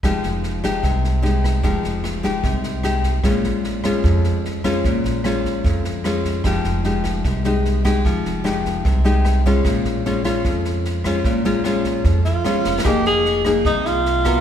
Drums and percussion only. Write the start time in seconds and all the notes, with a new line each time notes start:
0.03 kick, cross-stick, snare
0.23 snare
0.43 snare
0.63 kick, cross-stick, snare
0.83 kick, snare
1.04 snare
1.24 snare
1.44 kick, cross-stick, snare
1.63 kick, snare
1.84 snare
2.04 cross-stick, snare
2.23 kick, snare
2.44 kick, snare
2.63 snare
2.83 cross-stick, snare
3.03 kick, snare
3.24 kick, cross-stick, snare
3.44 snare
3.64 snare
3.84 kick, cross-stick, snare
4.04 kick, snare
4.24 snare
4.45 snare
4.64 kick, cross-stick, snare
4.84 kick, snare
5.05 snare
5.24 cross-stick, snare
5.44 kick, snare
5.64 kick, snare
5.84 snare
6.04 cross-stick, snare
6.24 kick, snare
6.44 kick, cross-stick, snare
6.64 snare
6.84 snare
7.04 kick, cross-stick, snare
7.24 kick, snare
7.44 snare
7.65 snare
7.85 kick, cross-stick, snare
8.05 kick, snare
8.25 snare
8.45 cross-stick, snare
8.65 kick, snare
8.85 kick, snare
9.05 snare
9.25 cross-stick, snare
9.45 kick, snare
9.65 kick, cross-stick, snare
9.85 snare
10.05 snare
10.25 kick, cross-stick, snare
10.45 kick, snare
10.65 snare
10.85 snare
11.04 kick, cross-stick, snare
11.24 kick, snare
11.45 snare
11.64 cross-stick, snare
11.84 kick, snare
12.04 kick, snare
12.24 snare
12.45 cross-stick, snare
12.64 snare
12.79 snare
12.85 kick, cross-stick, snare
13.05 snare
13.25 snare
13.45 kick, cross-stick, snare
13.65 kick, snare
13.85 snare
14.05 snare
14.25 kick, cross-stick, snare